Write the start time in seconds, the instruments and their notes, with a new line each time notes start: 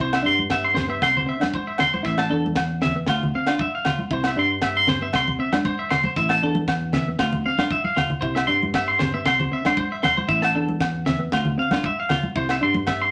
Already playing: clean electric guitar E4
0.00 fingered electric bass C2, clean electric guitar C5
0.13 clean electric guitar E5, snare, low agogo
0.22 fingered electric bass G2, clean electric guitar D4 C6
0.39 high conga
0.50 clean electric guitar E5, kick, snare, low agogo
0.64 clean electric guitar C6
0.74 clean electric guitar C4 C5, snare, low conga
0.88 clean electric guitar B3 E5
1.02 fingered electric bass C2, clean electric guitar C6, kick, snare, low agogo
1.17 clean electric guitar C5, low conga
1.26 clean electric guitar C4 E5
1.40 clean electric guitar D4, snare, high conga, low agogo
1.54 clean electric guitar C5, kick, high conga
1.67 clean electric guitar E5
1.78 clean electric guitar C6, snare, low conga, low agogo
1.94 clean electric guitar C5, high conga
2.03 fingered electric bass A1, clean electric guitar E4 E5, kick, snare
2.18 clean electric guitar A5, snare, low agogo
2.30 fingered electric bass E2, clean electric guitar D4 A4
2.46 high conga
2.56 kick, snare, low agogo
2.82 clean electric guitar C4 E5, snare, low conga
2.96 clean electric guitar B3
3.06 fingered electric bass D2, clean electric guitar F4, kick, snare, low agogo
3.23 low conga
3.35 clean electric guitar C4 F5
3.47 clean electric guitar D4 F4, snare, low agogo
3.59 clean electric guitar E5, kick, high conga
3.75 clean electric guitar F5
3.85 clean electric guitar F4, snare, low conga, low agogo
3.99 high conga
4.11 fingered electric bass C2, clean electric guitar E4 C5, kick
4.24 clean electric guitar E5, snare, low agogo
4.36 fingered electric bass G2, clean electric guitar D4 C6
4.62 clean electric guitar E5, kick, snare, low agogo
4.77 clean electric guitar C6
4.87 clean electric guitar C4 C5, snare, low conga
5.02 clean electric guitar B3 E5
5.13 fingered electric bass C2, clean electric guitar C6, kick, snare, low agogo
5.28 low conga
5.39 clean electric guitar C4 E5
5.53 clean electric guitar D4, muted clean electric guitar stroke, snare, high conga, low agogo
5.64 clean electric guitar C5, kick, high conga
5.79 clean electric guitar E5
5.91 clean electric guitar C6, snare, low conga, low agogo
6.04 clean electric guitar C5, high conga
6.16 fingered electric bass A1, clean electric guitar E4 E5, kick, snare
6.29 clean electric guitar A5, snare, low agogo
6.42 fingered electric bass E2, clean electric guitar D4 A4
6.55 high conga
6.68 kick, snare, low agogo
6.93 clean electric guitar C4 E5, snare, low conga
7.08 clean electric guitar B3
7.19 fingered electric bass D2, clean electric guitar F4, kick, snare, low agogo
7.33 low conga
7.46 clean electric guitar C4 F5
7.58 clean electric guitar D4 F4, snare, high conga, low agogo
7.70 clean electric guitar E5, kick, high conga
7.84 clean electric guitar F5, high conga
7.96 clean electric guitar F4, snare, low conga, low agogo
8.10 low conga
8.21 fingered electric bass C2, clean electric guitar E4 C5, kick
8.35 clean electric guitar E5, snare, low agogo
8.47 fingered electric bass G2, clean electric guitar D4 C6
8.63 high conga
8.74 clean electric guitar E5, kick, snare, low agogo
8.88 clean electric guitar C6
8.99 clean electric guitar C4 C5, snare, low conga
9.14 clean electric guitar B3 E5
9.25 fingered electric bass C2, clean electric guitar C6, kick, snare, low agogo
9.39 clean electric guitar C5, low conga
9.52 clean electric guitar C4 E5
9.65 clean electric guitar D4 C6, snare, high conga, low agogo
9.77 clean electric guitar C5, kick, high conga
9.92 clean electric guitar E5
10.03 clean electric guitar C6, snare, low conga, low agogo
10.17 clean electric guitar C5, high conga
10.28 fingered electric bass A1, clean electric guitar E4 E5, kick
10.42 clean electric guitar A5, snare, low agogo
10.55 fingered electric bass E2, clean electric guitar D4 A4
10.69 high conga
10.80 kick, snare, low agogo
11.06 clean electric guitar C4 E5, snare, low conga
11.19 clean electric guitar B3
11.32 fingered electric bass D2, clean electric guitar F4, kick, snare, low agogo
11.45 low conga
11.58 clean electric guitar C4 F5
11.71 clean electric guitar D4 F4, snare, high conga, low agogo
11.83 clean electric guitar E5, kick, high conga
12.00 clean electric guitar F5
12.09 clean electric guitar F4, snare, low conga, low agogo
12.23 high conga
12.36 fingered electric bass C2, clean electric guitar E4 C5, kick
12.49 clean electric guitar E5, snare, low agogo
12.61 fingered electric bass G2, clean electric guitar D4 C6
12.74 high conga
12.87 clean electric guitar E5, kick, snare, low agogo
13.02 clean electric guitar C6